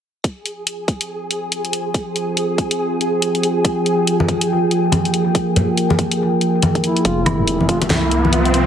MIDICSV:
0, 0, Header, 1, 8, 480
1, 0, Start_track
1, 0, Key_signature, -4, "minor"
1, 0, Tempo, 425532
1, 273, Time_signature, 4, 2, 24, 8
1, 9773, End_track
2, 0, Start_track
2, 0, Title_t, "Synth texture"
2, 0, Program_c, 0, 99
2, 274, Note_on_c, 0, 68, 77
2, 7952, Note_on_c, 0, 76, 82
2, 7965, Note_off_c, 0, 68, 0
2, 9773, Note_off_c, 0, 76, 0
2, 9773, End_track
3, 0, Start_track
3, 0, Title_t, "Ambient pad"
3, 0, Program_c, 1, 92
3, 270, Note_on_c, 1, 72, 69
3, 271, Note_on_c, 1, 65, 78
3, 271, Note_on_c, 1, 79, 85
3, 4073, Note_off_c, 1, 72, 0
3, 4113, Note_on_c, 1, 70, 73
3, 7907, Note_off_c, 1, 65, 0
3, 7907, Note_off_c, 1, 79, 0
3, 7915, Note_off_c, 1, 70, 0
3, 7953, Note_on_c, 1, 56, 87
3, 7954, Note_on_c, 1, 53, 78
3, 7954, Note_on_c, 1, 79, 73
3, 9773, Note_off_c, 1, 53, 0
3, 9773, Note_off_c, 1, 56, 0
3, 9773, Note_off_c, 1, 79, 0
3, 9773, End_track
4, 0, Start_track
4, 0, Title_t, "Synth stab"
4, 0, Program_c, 2, 62
4, 8335, Note_on_c, 2, 67, 68
4, 8335, Note_on_c, 2, 77, 81
4, 8336, Note_on_c, 2, 56, 73
4, 8441, Note_off_c, 2, 56, 0
4, 8441, Note_off_c, 2, 67, 0
4, 8441, Note_off_c, 2, 77, 0
4, 9773, End_track
5, 0, Start_track
5, 0, Title_t, "Duduk"
5, 0, Program_c, 3, 69
5, 7712, Note_on_c, 3, 64, 84
5, 7952, Note_on_c, 3, 65, 93
5, 7969, Note_off_c, 3, 64, 0
5, 8191, Note_on_c, 3, 64, 89
5, 8208, Note_off_c, 3, 65, 0
5, 8668, Note_off_c, 3, 64, 0
5, 8675, Note_on_c, 3, 65, 84
5, 8782, Note_off_c, 3, 65, 0
5, 8917, Note_on_c, 3, 64, 94
5, 9362, Note_off_c, 3, 64, 0
5, 9396, Note_on_c, 3, 65, 99
5, 9773, Note_off_c, 3, 65, 0
5, 9773, End_track
6, 0, Start_track
6, 0, Title_t, "Detuned saw bass"
6, 0, Program_c, 4, 39
6, 7952, Note_on_c, 4, 29, 97
6, 8898, Note_off_c, 4, 29, 0
6, 8913, Note_on_c, 4, 36, 97
6, 9773, Note_off_c, 4, 36, 0
6, 9773, End_track
7, 0, Start_track
7, 0, Title_t, "Riser"
7, 0, Program_c, 5, 103
7, 7953, Note_on_c, 5, 60, 75
7, 9773, Note_off_c, 5, 60, 0
7, 9773, End_track
8, 0, Start_track
8, 0, Title_t, "Drums"
8, 273, Note_on_c, 9, 36, 109
8, 274, Note_on_c, 9, 42, 78
8, 385, Note_off_c, 9, 36, 0
8, 386, Note_off_c, 9, 42, 0
8, 514, Note_on_c, 9, 42, 51
8, 627, Note_off_c, 9, 42, 0
8, 754, Note_on_c, 9, 42, 79
8, 867, Note_off_c, 9, 42, 0
8, 993, Note_on_c, 9, 36, 99
8, 994, Note_on_c, 9, 42, 52
8, 1106, Note_off_c, 9, 36, 0
8, 1106, Note_off_c, 9, 42, 0
8, 1137, Note_on_c, 9, 42, 75
8, 1250, Note_off_c, 9, 42, 0
8, 1474, Note_on_c, 9, 42, 51
8, 1586, Note_off_c, 9, 42, 0
8, 1714, Note_on_c, 9, 42, 82
8, 1827, Note_off_c, 9, 42, 0
8, 1857, Note_on_c, 9, 42, 37
8, 1953, Note_off_c, 9, 42, 0
8, 1953, Note_on_c, 9, 42, 60
8, 2066, Note_off_c, 9, 42, 0
8, 2193, Note_on_c, 9, 36, 111
8, 2193, Note_on_c, 9, 42, 80
8, 2306, Note_off_c, 9, 36, 0
8, 2306, Note_off_c, 9, 42, 0
8, 2434, Note_on_c, 9, 42, 53
8, 2546, Note_off_c, 9, 42, 0
8, 2674, Note_on_c, 9, 42, 81
8, 2786, Note_off_c, 9, 42, 0
8, 2913, Note_on_c, 9, 36, 103
8, 2914, Note_on_c, 9, 42, 53
8, 3026, Note_off_c, 9, 36, 0
8, 3027, Note_off_c, 9, 42, 0
8, 3058, Note_on_c, 9, 42, 80
8, 3170, Note_off_c, 9, 42, 0
8, 3394, Note_on_c, 9, 42, 50
8, 3507, Note_off_c, 9, 42, 0
8, 3635, Note_on_c, 9, 42, 80
8, 3748, Note_off_c, 9, 42, 0
8, 3778, Note_on_c, 9, 42, 38
8, 3874, Note_off_c, 9, 42, 0
8, 3874, Note_on_c, 9, 42, 58
8, 3987, Note_off_c, 9, 42, 0
8, 4113, Note_on_c, 9, 36, 114
8, 4115, Note_on_c, 9, 42, 76
8, 4226, Note_off_c, 9, 36, 0
8, 4228, Note_off_c, 9, 42, 0
8, 4355, Note_on_c, 9, 42, 52
8, 4468, Note_off_c, 9, 42, 0
8, 4595, Note_on_c, 9, 42, 81
8, 4708, Note_off_c, 9, 42, 0
8, 4739, Note_on_c, 9, 63, 87
8, 4833, Note_on_c, 9, 36, 104
8, 4835, Note_on_c, 9, 42, 52
8, 4852, Note_off_c, 9, 63, 0
8, 4946, Note_off_c, 9, 36, 0
8, 4948, Note_off_c, 9, 42, 0
8, 4979, Note_on_c, 9, 42, 81
8, 5092, Note_off_c, 9, 42, 0
8, 5315, Note_on_c, 9, 42, 49
8, 5428, Note_off_c, 9, 42, 0
8, 5551, Note_on_c, 9, 63, 85
8, 5555, Note_on_c, 9, 42, 79
8, 5663, Note_off_c, 9, 63, 0
8, 5668, Note_off_c, 9, 42, 0
8, 5700, Note_on_c, 9, 42, 37
8, 5795, Note_off_c, 9, 42, 0
8, 5795, Note_on_c, 9, 42, 60
8, 5908, Note_off_c, 9, 42, 0
8, 6033, Note_on_c, 9, 36, 118
8, 6035, Note_on_c, 9, 42, 76
8, 6146, Note_off_c, 9, 36, 0
8, 6147, Note_off_c, 9, 42, 0
8, 6275, Note_on_c, 9, 42, 52
8, 6275, Note_on_c, 9, 64, 72
8, 6388, Note_off_c, 9, 42, 0
8, 6388, Note_off_c, 9, 64, 0
8, 6514, Note_on_c, 9, 42, 77
8, 6627, Note_off_c, 9, 42, 0
8, 6659, Note_on_c, 9, 63, 91
8, 6753, Note_on_c, 9, 36, 104
8, 6754, Note_on_c, 9, 42, 51
8, 6772, Note_off_c, 9, 63, 0
8, 6866, Note_off_c, 9, 36, 0
8, 6867, Note_off_c, 9, 42, 0
8, 6898, Note_on_c, 9, 42, 76
8, 7010, Note_off_c, 9, 42, 0
8, 7234, Note_on_c, 9, 42, 49
8, 7346, Note_off_c, 9, 42, 0
8, 7473, Note_on_c, 9, 42, 75
8, 7476, Note_on_c, 9, 63, 87
8, 7585, Note_off_c, 9, 42, 0
8, 7589, Note_off_c, 9, 63, 0
8, 7617, Note_on_c, 9, 36, 61
8, 7617, Note_on_c, 9, 42, 34
8, 7713, Note_off_c, 9, 42, 0
8, 7713, Note_on_c, 9, 42, 59
8, 7729, Note_off_c, 9, 36, 0
8, 7825, Note_off_c, 9, 42, 0
8, 7857, Note_on_c, 9, 42, 36
8, 7952, Note_off_c, 9, 42, 0
8, 7952, Note_on_c, 9, 42, 78
8, 7953, Note_on_c, 9, 36, 114
8, 8064, Note_off_c, 9, 42, 0
8, 8065, Note_off_c, 9, 36, 0
8, 8189, Note_on_c, 9, 63, 83
8, 8192, Note_on_c, 9, 42, 54
8, 8192, Note_on_c, 9, 77, 58
8, 8302, Note_off_c, 9, 63, 0
8, 8305, Note_off_c, 9, 42, 0
8, 8305, Note_off_c, 9, 77, 0
8, 8432, Note_on_c, 9, 42, 84
8, 8545, Note_off_c, 9, 42, 0
8, 8579, Note_on_c, 9, 63, 60
8, 8673, Note_on_c, 9, 36, 104
8, 8673, Note_on_c, 9, 42, 55
8, 8692, Note_off_c, 9, 63, 0
8, 8785, Note_off_c, 9, 36, 0
8, 8785, Note_off_c, 9, 42, 0
8, 8816, Note_on_c, 9, 42, 79
8, 8816, Note_on_c, 9, 62, 60
8, 8913, Note_on_c, 9, 38, 115
8, 8915, Note_on_c, 9, 63, 96
8, 8929, Note_off_c, 9, 42, 0
8, 8929, Note_off_c, 9, 62, 0
8, 9025, Note_off_c, 9, 38, 0
8, 9028, Note_off_c, 9, 63, 0
8, 9153, Note_on_c, 9, 42, 52
8, 9266, Note_off_c, 9, 42, 0
8, 9302, Note_on_c, 9, 63, 60
8, 9393, Note_on_c, 9, 42, 82
8, 9415, Note_off_c, 9, 63, 0
8, 9505, Note_off_c, 9, 42, 0
8, 9537, Note_on_c, 9, 42, 38
8, 9632, Note_off_c, 9, 42, 0
8, 9632, Note_on_c, 9, 42, 63
8, 9745, Note_off_c, 9, 42, 0
8, 9773, End_track
0, 0, End_of_file